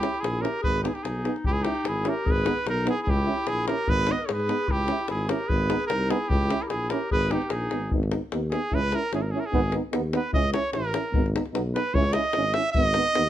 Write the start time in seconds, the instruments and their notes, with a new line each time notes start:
Already playing: clarinet E4, cornet G4
0.02 trombone C#4, euphonium E4, davul high
0.14 davul high
0.20 tuba A#1, clarinet E4, cornet G#4
0.24 davul high
0.41 trombone C#4, euphonium E4, clarinet G4, cornet A#4, davul high
0.61 tuba G#1, clarinet G#4, cornet B4, davul low
0.82 trombone B3, clarinet D#4, euphonium D#4, cornet G4, davul high
0.88 clarinet E4, cornet G#4
0.94 clarinet D#4, cornet G4, davul high
1.00 clarinet D#4, cornet G#4
1.05 tuba B1, davul high
1.25 trombone B3, euphonium D#4, davul high
1.36 davul high
1.44 tuba C#2, clarinet E4, cornet G4, davul low
1.52 clarinet E4, cornet G#4
1.62 trombone C#4, clarinet D#4, euphonium E4, cornet G4, davul high
1.75 davul high
1.85 tuba G#1, clarinet E4, cornet G#4, davul high
2.05 trombone C#4, euphonium E4, clarinet G4, davul high
2.09 cornet A#4
2.26 tuba G#1, clarinet G#4, davul low
2.31 cornet B4
2.45 trombone B3, euphonium D#4, davul high
2.57 davul high
2.66 tuba B1, clarinet D#4, cornet A#4, davul high
2.86 trombone B3, euphonium D#4, cornet G#4, davul high
2.90 clarinet E4
2.98 clarinet E4, cornet G#4
3.07 tuba C#2, clarinet E4, cornet G4, davul low
3.26 trombone C#4, euphonium E4
3.38 davul high
3.47 tuba A#1, clarinet E4, cornet G#4, davul high
3.67 trombone C#4, euphonium E4, clarinet G4, cornet A#4, davul high
3.88 tuba G#1, clarinet G#4, cornet B4, davul low
4.07 trombone B3, euphonium D#4, clarinet B4, davul high
4.12 cornet D#5
4.18 clarinet A#4, davul high
4.25 tuba G#2, clarinet G#4, cornet C#5, davul high
4.33 cornet B4
4.40 davul high
4.49 trombone B3, euphonium D#4, davul high
4.68 tuba C#2, clarinet E4, cornet G4, davul low
4.88 trombone C#4, euphonium E4, davul high
4.99 davul high
5.08 tuba G#1, clarinet E4, cornet G#4, davul high
5.28 trombone C#4, euphonium E4, clarinet G4, cornet A#4, davul high
5.47 tuba G#1, clarinet G#4, cornet B4, davul low
5.69 trombone B3, euphonium D#4, davul high
5.80 davul high
5.87 tuba C2, cornet A#4, davul high
5.91 clarinet D#4
6.09 trombone B3, euphonium D#4, clarinet E4, cornet G#4, davul high
6.29 tuba C#2, clarinet E4, cornet G4, davul low
6.50 trombone C#4, euphonium E4, davul high
6.62 cornet A#4, davul high
6.67 tuba A#1, clarinet E4 G4, cornet G#4, davul high
6.90 trombone C#4, euphonium E4, clarinet G4, cornet A#4, davul high
7.11 tuba G#1, clarinet G#4, cornet B4, davul low
7.21 davul high
7.30 trombone B3, euphonium D#4, clarinet D#4, cornet G4, davul high
7.42 clarinet G4, davul high
7.48 tuba A#1, clarinet D#4, cornet G#4 A#4, davul high
7.71 tuba G#1, trombone B3, euphonium D#4, davul high
7.92 tuba G#1, trombone B3, euphonium D#4, davul low
8.03 davul high
8.12 trombone B3, euphonium D#4, davul high
8.32 tuba D#2, trombone B3, euphonium D#4, davul high
8.51 trombone B3, euphonium D#4, cornet G#4, davul high
8.71 tuba C#2, trombone C#4, euphonium E4, cornet B4, davul low
8.82 davul high
8.92 trombone C#4, euphonium E4, cornet A#4, davul high
9.02 davul high
9.11 tuba G#1, trombone C#4, euphonium E4, cornet G#4, davul high
9.22 cornet A#4
9.31 trombone C#4, cornet G#4
9.36 euphonium E4, cornet A#4
9.46 cornet G#4
9.52 tuba G#1, trombone B3, euphonium D#4, davul low
9.64 davul high
9.72 trombone B3, euphonium D#4, davul high
9.93 tuba D#2, trombone B3, euphonium D#4, davul high
10.13 trombone B3, euphonium D#4, cornet B4, davul high
10.33 tuba C#2, trombone C#4, euphonium E4, cornet D#5, davul low
10.44 davul high
10.53 trombone C#4, euphonium E4, cornet C#5, davul high
10.73 tuba A1, trombone C#4, euphonium E4, cornet A#4, davul high
10.85 davul high
10.94 trombone C#4, euphonium E4, davul high
11.13 tuba G#1, trombone B3, euphonium D#4, davul low
11.26 davul high
11.35 trombone B3, euphonium D#4, davul high
11.46 davul high
11.53 tuba B1, trombone B3, euphonium D#4, davul high
11.74 trombone B3, euphonium D#4, cornet B4, davul high
11.94 tuba C#2, trombone C#4, euphonium E4, cornet C#5, davul low
12.04 davul high
12.13 trombone C#4, euphonium E4, cornet D#5, davul high
12.24 davul high
12.33 tuba G#1, trombone C#4, euphonium E4, davul high
12.53 trombone C#4, euphonium E4, cornet E5, davul high
12.73 tuba G#1, trombone B3, euphonium D#4, cornet D#5, davul low
12.85 davul high
12.94 trombone B3, euphonium D#4, davul high
13.06 davul high
13.15 tuba D#2, trombone B3, euphonium D#4, davul high